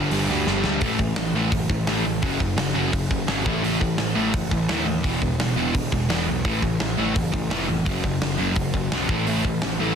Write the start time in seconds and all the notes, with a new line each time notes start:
Already playing: G1 G2 D3 G3
0.11 G1 G2 D3 G3, open hi-hat
0.30 D2 G2 D3 G3
0.47 G1 G2 D3 G3, snare
0.64 D2 G2 D3 G3, snare
0.81 A1 A2 E3 A3, kick, open hi-hat
0.99 A1 A2 E3, kick
1.16 A1 A2 E3, snare, open hi-hat
1.34 A1 A2 E3 A3
1.51 F#1 A2 E3, kick, open hi-hat
1.69 A1 A2 E3, kick
1.87 A1 A2 E3 A3, snare, open hi-hat
2.05 A2 E3
2.22 F#1 F#2 C#3 F#3, kick, open hi-hat
2.40 F#1 F#2 C#3, kick
2.57 F#1 F#2 C#3, snare, open hi-hat
2.75 F#1 F#2 C#3 F#3
2.92 F#1 F#2 C#3, kick, open hi-hat
3.10 F#1 F#2 C#3, kick
3.27 G#1 F#2 C#3 F#3, snare, open hi-hat
3.45 A1 A2 E3 A3, kick
3.63 A1 A2 E3 A3, open hi-hat
3.81 A1 A2 E3, kick
3.98 A1 A2 E3, snare, open hi-hat
4.15 A1 A2 E3 A3
4.33 F#1 A2 E3, kick, open hi-hat
4.51 A1 A2 E3, kick
4.69 D#2 A2 E3 A3, snare, open hi-hat
4.86 A2 E3
5.04 E1 E2 B2 E3, kick, open hi-hat
5.22 E1 E2 B2, kick
5.38 E1 E2 B2, snare, open hi-hat
5.56 E1 E2 B2 E3
5.74 E1 E2 B2, kick, open hi-hat
5.92 E1 E2 B2, kick
6.09 E1 E2 B2 E3, snare, open hi-hat
6.27 B1 E2 B2
6.45 A1 A2 E3 A3, kick, open hi-hat
6.62 A1 A2 E3, kick
6.80 A1 A2 E3, snare, open hi-hat
6.97 A1 A2 E3 A3
7.15 F#1 A2 E3, kick, open hi-hat
7.33 A1 A2 E3, kick
7.50 F1 A2 E3 A3, snare, open hi-hat
7.68 A2 E3
7.85 F#1 F#2 C#3 F#3, kick, open hi-hat
8.04 F#1 F#2 C#3, kick
8.21 F#1 F#2 C#3, snare, open hi-hat
8.38 F#1 F#2 C#3 F#3
8.56 F#1 F#2 C#3, kick, open hi-hat
8.74 F#1 F#2 C#3, kick
8.92 B1 F#2 C#3 F#3, snare, open hi-hat
9.09 A1 A2 E3 A3, kick
9.27 A1 A2 E3 A3, open hi-hat
9.44 A1 A2 E3, kick
9.62 A1 A2 E3, snare, open hi-hat
9.80 A1 A2 E3 A3